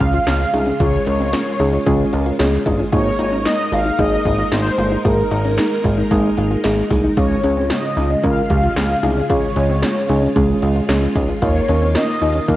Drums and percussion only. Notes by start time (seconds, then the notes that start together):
0.00 kick, closed hi-hat
0.27 snare, closed hi-hat
0.54 closed hi-hat
0.80 kick, closed hi-hat
1.06 closed hi-hat
1.33 snare, closed hi-hat
1.60 open hi-hat
1.86 kick, closed hi-hat
2.13 closed hi-hat
2.39 snare, closed hi-hat
2.66 kick, closed hi-hat
2.92 kick, closed hi-hat
3.19 closed hi-hat
3.45 snare, closed hi-hat
3.72 open hi-hat
3.99 kick, closed hi-hat
4.25 kick, closed hi-hat
4.52 snare, closed hi-hat
4.78 closed hi-hat
5.05 kick, closed hi-hat
5.31 closed hi-hat
5.58 snare, closed hi-hat
5.84 kick, open hi-hat
6.11 kick, closed hi-hat
6.37 closed hi-hat
6.64 snare, closed hi-hat
6.91 kick, open hi-hat
7.17 kick, closed hi-hat
7.44 closed hi-hat
7.70 snare, closed hi-hat
7.97 open hi-hat
8.24 kick, closed hi-hat
8.50 kick, closed hi-hat
8.76 snare, closed hi-hat
9.03 closed hi-hat
9.30 kick, closed hi-hat
9.56 closed hi-hat
9.82 snare, closed hi-hat
10.09 open hi-hat
10.36 kick, closed hi-hat
10.62 closed hi-hat
10.89 snare, closed hi-hat
11.15 kick, closed hi-hat
11.42 kick, closed hi-hat
11.68 closed hi-hat
11.95 snare, closed hi-hat
12.22 open hi-hat
12.48 kick, closed hi-hat